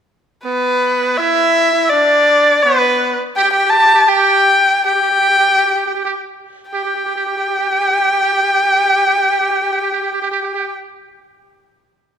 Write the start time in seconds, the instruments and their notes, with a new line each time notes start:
0.44 muted trumpet B3, erhu B4
1.18 muted trumpet E4, erhu E5
1.73 muted trumpet E4
1.89 muted trumpet D4, erhu D5
2.62 muted trumpet B3, erhu B4
3.36 muted trumpet G4, erhu G5
3.43 muted trumpet G4
3.51 muted trumpet G4, erhu G5
3.58 muted trumpet G4
3.65 muted trumpet G4
3.70 muted trumpet G4, erhu A5
3.78 muted trumpet G4
3.86 muted trumpet G4
3.94 muted trumpet G4
4.00 erhu A5
4.07 muted trumpet G4, erhu G5
4.85 muted trumpet G4, erhu G5
4.95 muted trumpet G4
5.02 muted trumpet G4
5.11 muted trumpet G4
5.21 muted trumpet G4
5.30 muted trumpet G4
5.39 muted trumpet G4
5.50 muted trumpet G4
5.58 muted trumpet G4
5.66 muted trumpet G4
5.75 muted trumpet G4
5.86 muted trumpet G4
5.94 muted trumpet G4
6.05 muted trumpet G4
6.69 erhu G5
6.73 muted trumpet G4
6.85 muted trumpet G4
6.95 muted trumpet G4
7.06 muted trumpet G4
7.16 muted trumpet G4
7.26 muted trumpet G4
7.37 muted trumpet G4
7.49 muted trumpet G4
7.59 muted trumpet G4
7.70 muted trumpet G4
7.80 muted trumpet G4
7.90 muted trumpet G4
8.00 muted trumpet G4
8.12 muted trumpet G4
8.23 muted trumpet G4
8.33 muted trumpet G4
8.43 muted trumpet G4
8.53 muted trumpet G4
8.64 muted trumpet G4
8.74 muted trumpet G4
8.85 muted trumpet G4
8.96 muted trumpet G4
9.07 muted trumpet G4
9.18 muted trumpet G4
9.30 muted trumpet G4
9.41 muted trumpet G4
9.51 muted trumpet G4
9.62 muted trumpet G4
9.72 muted trumpet G4
9.82 muted trumpet G4
9.92 muted trumpet G4
10.02 muted trumpet G4
10.13 muted trumpet G4
10.22 muted trumpet G4
10.31 muted trumpet G4
10.42 muted trumpet G4
10.54 muted trumpet G4